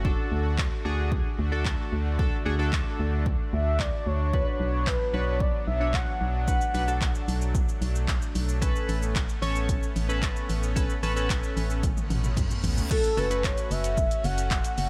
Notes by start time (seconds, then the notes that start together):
Already playing: F#1 F#4
0.04 D3 A3 D4 F#4 A4, kick
0.32 D2
0.58 kick, clap
0.85 D2 D4 F#4 G#4
1.12 kick
1.39 D2
1.52 D4 F#4 A4
1.65 kick, clap
1.92 D2
2.19 D4 F#4 A4, kick
2.45 D2 D4 F#4 G#4
2.59 D4 F#4 A4
2.73 kick, clap
3.00 D2
3.26 kick
3.53 D2 E5
3.80 D5, kick, clap
4.06 D2 C#5
4.33 F#3 B3 D4 F#4 B4, kick
4.60 B1 C#5
4.87 B4, kick, clap
5.13 B1 D4 F#4 B4 C#5
5.40 D5, kick
5.67 B1 E5
5.80 D4 F#4 C#5
5.94 F#5, kick, clap
6.21 B1
6.34 F#5
6.48 A3 D4 F#4 B4, kick, shaker
6.61 shaker
6.74 B1 D4 F#4 B4, open hi-hat, shaker
6.88 D4 F#4 A4, shaker
7.01 kick, clap, shaker
7.15 shaker
7.28 B1, open hi-hat, shaker
7.41 shaker
7.55 kick, shaker
7.69 shaker
7.82 B1, open hi-hat, shaker
7.95 shaker
8.08 kick, clap, shaker
8.22 shaker
8.35 B1, open hi-hat, shaker
8.49 shaker
8.61 B3 C#4 A4 B4, kick, closed hi-hat, shaker
8.76 shaker
8.89 A1, open hi-hat, shaker
9.02 shaker
9.16 kick, clap, closed hi-hat, shaker
9.29 shaker
9.42 A1 C#4 A4 C#5, open hi-hat, shaker
9.56 shaker
9.69 kick, closed hi-hat, shaker
9.83 shaker
9.96 A1, open hi-hat, shaker
10.09 C#4 A4 B4, shaker
10.22 kick, clap, closed hi-hat, shaker
10.36 shaker
10.49 A1, open hi-hat, shaker
10.63 shaker
10.76 C#4 A4 B4, kick, closed hi-hat, shaker
10.90 shaker
11.03 A1 C#4 A4 B4, open hi-hat, shaker
11.16 C#4 A4 B4, shaker
11.30 kick, clap, closed hi-hat, shaker
11.43 shaker
11.57 A1, open hi-hat, shaker
11.70 shaker
11.83 kick, closed hi-hat, high tom, reverse cymbal, shaker
11.97 high tom, shaker
12.10 A1, open hi-hat, mid tom, shaker
12.24 mid tom, shaker
12.37 kick, closed hi-hat, mid tom, shaker
12.51 mid tom, shaker
12.64 A1, floor tom, open hi-hat, shaker
12.77 floor tom, shaker
12.90 A3 C#4 F#4 A4, kick, crash, shaker
13.04 closed hi-hat, shaker
13.17 F#1 A3 C#4 F#4 A4 B4, open hi-hat, shaker
13.30 A3 C#4 F#4 B4, closed hi-hat, shaker
13.44 C#5, kick, clap, shaker
13.58 closed hi-hat, shaker
13.71 F#1 E5, open hi-hat, shaker
13.84 closed hi-hat, shaker
13.97 kick, shaker
14.11 closed hi-hat, shaker
14.24 F#1 F#5, open hi-hat, shaker
14.38 closed hi-hat, shaker
14.51 kick, clap, shaker
14.64 closed hi-hat, shaker
14.78 F#1 F#5, open hi-hat, shaker